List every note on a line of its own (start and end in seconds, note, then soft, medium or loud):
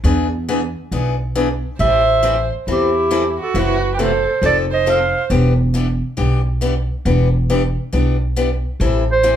0.04 0.74 E2 medium
0.04 0.26 E3 medium
0.04 0.26 B3 medium
0.04 0.27 D4 medium
0.04 0.27 G#4 medium
0.49 0.60 E3 medium
0.49 0.60 B3 medium
0.49 0.60 D4 medium
0.49 0.60 G#4 medium
0.91 1.62 B1 medium
0.91 1.14 E3 medium
0.91 1.14 B3 medium
0.91 1.14 D4 medium
0.91 1.14 G#4 medium
1.35 1.47 E3 medium
1.35 1.47 B3 medium
1.35 1.47 D4 medium
1.35 1.47 G#4 medium
1.79 2.49 A1 medium
1.79 2.01 E3 medium
1.79 2.01 G3 medium
1.79 2.02 C4 medium
1.79 2.02 E4 medium
1.79 2.02 A4 medium
1.79 2.47 C5 medium
1.79 2.48 E5 loud
2.23 2.35 E3 medium
2.23 2.35 G3 medium
2.23 2.35 C4 medium
2.23 2.35 E4 medium
2.23 2.35 A4 medium
2.67 3.37 E2 medium
2.67 2.89 E3 medium
2.67 2.90 G3 medium
2.67 2.89 C4 medium
2.67 2.90 E4 medium
2.67 3.36 E4 medium
2.67 2.90 A4 medium
2.72 3.37 G4 medium
3.11 3.22 E3 medium
3.11 3.22 G3 medium
3.11 3.22 C4 medium
3.11 3.23 E4 medium
3.11 3.23 A4 medium
3.40 3.55 F#4 medium
3.40 3.60 A4 medium
3.54 4.24 F#1 medium
3.54 3.77 C3 medium
3.54 3.77 E3 medium
3.54 3.77 A3 medium
3.54 3.77 E4 medium
3.54 3.94 F#4 medium
3.54 3.77 F#4 medium
3.54 3.95 B4 medium
3.94 4.01 G4 medium
3.94 4.04 B4 medium
3.99 4.10 C3 medium
3.99 4.10 E3 medium
3.99 4.11 A3 medium
3.99 4.10 E4 medium
3.99 4.11 F#4 medium
3.99 4.42 A4 medium
3.99 4.44 C5 medium
4.42 5.12 F1 medium
4.42 4.65 F3 medium
4.42 4.65 C4 medium
4.42 4.65 D#4 medium
4.42 4.55 A4 medium
4.42 4.65 A4 medium
4.42 4.58 D5 medium
4.71 4.85 C5 medium
4.71 4.91 D#5 medium
4.85 4.98 F3 medium
4.85 4.98 C4 medium
4.85 4.98 D#4 medium
4.85 4.98 A4 medium
4.85 5.22 C5 medium
4.89 5.24 F5 medium
5.30 6.00 E1 medium
5.30 5.52 E3 medium
5.30 5.52 B3 medium
5.30 5.52 D4 medium
5.30 5.53 G4 medium
5.74 5.85 E3 medium
5.74 5.86 B3 medium
5.74 5.86 D4 medium
5.74 5.86 G4 medium
6.17 6.88 B1 medium
6.17 6.39 E3 medium
6.17 6.39 B3 medium
6.17 6.39 D4 medium
6.17 6.40 G4 medium
6.61 6.73 E3 medium
6.61 6.73 B3 medium
6.61 6.73 D4 medium
6.61 6.73 G4 medium
7.05 7.75 E1 medium
7.05 7.28 E3 medium
7.05 7.28 B3 medium
7.05 7.28 D4 medium
7.05 7.28 G4 medium
7.50 7.61 E3 medium
7.50 7.61 B3 medium
7.50 7.61 D4 medium
7.50 7.61 G4 medium
7.93 8.63 B1 medium
7.93 8.15 E3 medium
7.93 8.15 B3 medium
7.93 8.15 D4 medium
7.93 8.15 G4 medium
8.36 8.48 E3 medium
8.36 8.49 B3 medium
8.36 8.49 D4 medium
8.36 8.49 G4 medium
8.80 9.36 A1 medium
8.80 9.03 E3 medium
8.80 9.03 G3 medium
8.80 9.03 C4 medium
8.80 9.03 E4 medium
8.80 9.03 A4 medium
9.12 9.36 C5 loud
9.23 9.36 E3 medium
9.23 9.36 G3 medium
9.23 9.36 C4 medium
9.23 9.36 E4 medium
9.23 9.36 A4 medium